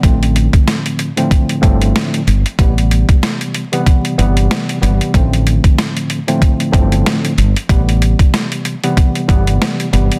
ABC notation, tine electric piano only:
X:1
M:4/4
L:1/16
Q:"Swing 16ths" 1/4=94
K:Am
V:1 name="Tine electric piano" clef=bass
[A,,D,F,A,C]6 z [A,,D,F,A,C]3 [A,,D,F,A,C]4 z2 | [C,E,G,B,]6 z [C,E,G,B,]3 [C,E,G,B,]4 [C,E,G,B,]2 | [A,,D,F,A,C]6 z [A,,D,F,A,C]3 [A,,D,F,A,C]4 z2 | [C,E,G,B,]6 z [C,E,G,B,]3 [C,E,G,B,]4 [C,E,G,B,]2 |]